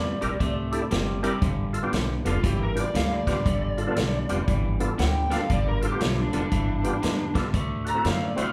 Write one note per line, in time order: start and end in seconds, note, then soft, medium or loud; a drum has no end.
0.00 0.12 E2 medium
0.00 0.18 C3 medium
0.00 0.19 G3 medium
0.00 0.54 D5 medium
0.21 0.35 A#1 medium
0.21 0.39 C3 medium
0.21 0.39 G3 medium
0.21 0.31 D4 medium
0.21 0.31 E4 medium
0.21 0.31 G4 medium
0.21 0.32 A#4 medium
0.21 closed hi-hat medium
0.40 0.75 C2 medium
0.40 0.88 C3 medium
0.40 0.88 A3 medium
0.40 kick medium
0.40 closed hi-hat medium
0.71 0.82 D4 medium
0.71 0.82 E4 medium
0.71 0.82 G4 medium
0.71 0.82 A4 medium
0.71 closed hi-hat medium
0.91 1.27 F#1 medium
0.91 1.21 C3 medium
0.91 1.21 G3 medium
0.91 snare loud
0.91 closed hi-hat medium
1.22 1.40 C3 medium
1.22 1.41 G3 medium
1.22 1.33 D4 medium
1.22 1.33 E4 medium
1.22 1.33 G4 medium
1.22 1.33 A#4 loud
1.22 closed hi-hat medium
1.42 1.77 G1 medium
1.42 1.90 G2 medium
1.42 1.90 D3 medium
1.42 kick loud
1.42 closed hi-hat medium
1.73 1.79 F4 medium
1.73 1.79 A4 medium
1.73 closed hi-hat medium
1.83 1.93 B3 medium
1.83 1.93 D4 medium
1.83 1.93 F4 medium
1.83 1.94 G4 medium
1.93 2.15 B1 medium
1.93 2.22 G2 medium
1.93 2.23 D3 medium
1.93 snare loud
1.93 closed hi-hat medium
2.25 2.38 F1 medium
2.25 2.41 G2 medium
2.25 2.43 D3 medium
2.25 2.35 B3 medium
2.25 2.35 D4 medium
2.25 2.35 F4 medium
2.25 2.44 F4 loud
2.25 2.35 A4 medium
2.25 closed hi-hat medium
2.42 2.79 G1 medium
2.42 2.91 G2 medium
2.42 2.91 E3 medium
2.42 2.62 G4 medium
2.42 kick loud
2.42 closed hi-hat medium
2.63 2.79 A#4 medium
2.75 2.86 B3 medium
2.75 2.86 D4 medium
2.75 2.86 F4 medium
2.75 2.86 G4 medium
2.75 closed hi-hat medium
2.80 2.96 D5 medium
2.94 3.30 D2 medium
2.94 3.24 G2 medium
2.94 3.24 D3 loud
2.94 3.12 F5 medium
2.94 snare loud
2.94 closed hi-hat medium
3.13 4.62 D5 medium
3.27 3.44 G2 medium
3.27 3.45 D3 medium
3.27 3.37 B3 medium
3.27 3.37 D4 medium
3.27 3.37 F4 medium
3.27 3.37 G4 medium
3.27 kick medium
3.27 snare soft
3.27 closed hi-hat medium
3.45 3.81 G1 medium
3.45 3.93 G2 medium
3.45 3.94 D3 medium
3.45 kick loud
3.45 closed hi-hat medium
3.78 3.83 F4 medium
3.78 3.83 A4 medium
3.78 closed hi-hat soft
3.87 3.97 B3 medium
3.87 3.97 D4 medium
3.87 3.97 F4 medium
3.87 3.97 A4 medium
3.96 4.19 B1 medium
3.96 4.26 G2 medium
3.96 4.27 D3 loud
3.96 snare loud
3.96 closed hi-hat medium
4.29 4.42 F1 medium
4.29 4.46 G2 medium
4.29 4.46 D3 medium
4.29 4.39 B3 medium
4.29 4.39 D4 medium
4.29 4.39 F4 medium
4.29 4.39 G4 medium
4.29 closed hi-hat medium
4.48 4.83 G1 medium
4.48 4.95 G2 medium
4.48 4.96 E3 medium
4.48 kick loud
4.48 closed hi-hat medium
4.80 4.90 B3 medium
4.80 4.90 D4 medium
4.80 4.90 F4 medium
4.80 4.90 A4 loud
4.80 closed hi-hat medium
4.98 5.34 D2 medium
4.98 5.28 G2 medium
4.98 5.28 D3 loud
4.98 5.32 G5 medium
4.98 snare loud
4.98 closed hi-hat medium
5.30 5.48 G2 medium
5.30 5.48 D3 medium
5.30 5.40 B3 medium
5.30 5.40 D4 medium
5.30 5.41 F4 medium
5.30 5.41 A4 medium
5.30 5.50 F5 medium
5.30 snare soft
5.30 closed hi-hat medium
5.50 5.85 G1 medium
5.50 5.97 G2 medium
5.50 5.98 D3 loud
5.50 5.67 D5 medium
5.50 kick loud
5.50 closed hi-hat medium
5.68 5.84 A#4 medium
5.82 5.87 F4 medium
5.82 5.87 A4 medium
5.82 closed hi-hat medium
5.87 6.01 G4 medium
5.91 6.01 B3 medium
5.91 6.01 D4 medium
5.91 6.01 F4 medium
5.91 6.01 G4 medium
6.00 6.23 B1 loud
6.00 6.30 G2 medium
6.00 6.30 D3 medium
6.00 6.18 F4 loud
6.00 snare loud
6.00 closed hi-hat medium
6.20 6.36 D4 medium
6.33 6.46 F1 medium
6.33 6.50 G2 medium
6.33 6.50 D3 medium
6.33 6.42 B3 medium
6.33 6.43 D4 medium
6.33 6.43 F4 medium
6.33 6.43 A4 medium
6.33 closed hi-hat medium
6.37 7.35 D4 medium
6.52 6.86 G1 medium
6.52 6.99 G2 medium
6.52 6.99 E3 medium
6.52 kick loud
6.52 closed hi-hat medium
6.83 6.93 B3 medium
6.83 6.93 D4 medium
6.83 6.94 F4 medium
6.83 6.94 G4 medium
6.83 closed hi-hat medium
7.02 7.38 E2 medium
7.02 7.32 G2 medium
7.02 7.32 D3 loud
7.02 snare loud
7.02 closed hi-hat medium
7.34 7.51 G2 medium
7.34 7.52 D3 medium
7.34 7.44 B3 medium
7.34 7.44 D4 medium
7.34 7.45 F4 medium
7.34 7.45 A4 medium
7.34 kick medium
7.34 snare soft
7.34 closed hi-hat medium
7.53 7.89 D2 medium
7.53 8.01 D3 medium
7.53 8.01 A3 medium
7.53 kick loud
7.53 closed hi-hat medium
7.85 7.90 F#4 medium
7.85 7.91 A4 medium
7.85 closed hi-hat medium
7.90 8.05 A#5 medium
7.94 8.04 C4 medium
7.94 8.04 E4 medium
7.94 8.05 F#4 medium
7.94 8.05 A4 medium
8.05 8.27 F#2 medium
8.05 8.34 D3 medium
8.05 8.34 A3 medium
8.05 8.25 F5 medium
8.05 snare loud
8.05 closed hi-hat medium
8.25 8.42 D5 medium
8.36 8.50 C2 medium
8.36 8.53 D3 medium
8.36 8.53 A3 medium
8.36 8.46 C4 medium
8.36 8.46 E4 medium
8.36 8.46 F#4 medium
8.36 8.47 C5 medium
8.36 closed hi-hat medium
8.42 8.53 F5 medium